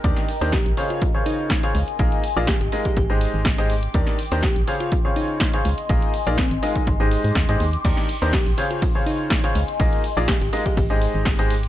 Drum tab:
CC |----------------|----------------|----------------|----------------|
RD |----------------|----------------|----------------|----------------|
HH |xxooxxoxx-o-xxox|xxo-xxoxx-o-xxox|xxooxxoxx-o-xxox|xxoxxxoxx-ooxxox|
SD |-o--o-------o---|----o-------o---|-o--o-------o---|----o-------o---|
BD |o---o---o---o---|o---o--oo---o---|o---o---o---o---|o---o--oo---o---|

CC |x---------------|----------------|
RD |x---x---x---x---|x---x---x---x---|
HH |xxooxxoxx-o-xxox|xxo-xxoxx-o-xxox|
SD |-o--o-------o---|----o-------o---|
BD |o---o---o---o---|o---o--oo---o---|